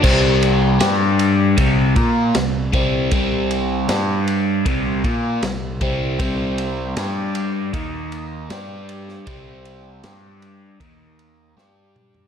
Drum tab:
CC |x---------------|----------------|----------------|----------------|
RD |--x-x-x-x-x-x-x-|x-x-x-x-x-x-x-x-|x-x-x-x-x-x-x-x-|x-x-x-x-x-x-----|
SD |----o-------o---|----o-------o---|----o-------o--o|----o-------o---|
T2 |----------------|----------------|----------------|--------------o-|
FT |----------------|----------------|----------------|---------------o|
BD |o-------o-o---o-|o-------o-o---o-|o-------o-------|o-------o-------|